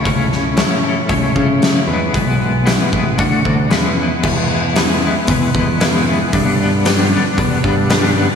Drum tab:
CC |--------|--------|x-------|--------|
HH |o-o-o-o-|o-o-o-o-|--o-o-o-|o-o-o-o-|
SD |-oo---o-|--o---o-|--o---o-|--o---o-|
BD |o---oo--|o--ooo--|o---oo--|o---oo--|